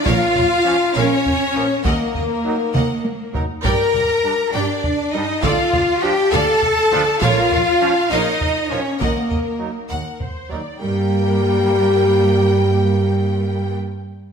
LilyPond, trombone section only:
\new Staff \with { instrumentName = "Trombone section" } { \clef bass \time 6/8 \key g \minor \tempo 4. = 67 r4 <f des'>16 r4 r16 <f des'>16 r16 | r4 <ges ees'>16 r4 r16 <ges ees'>16 r16 | r4 <g d'>16 r4 r16 <g d'>16 r16 | r4 <f d'>16 r4 r16 <f d'>16 r16 |
r4 <f des'>16 r4 r16 <f des'>16 r16 | r4 <ges ees'>16 r4 r16 <ges ees'>16 r16 | <g bes>2.~ | <g bes>2. | }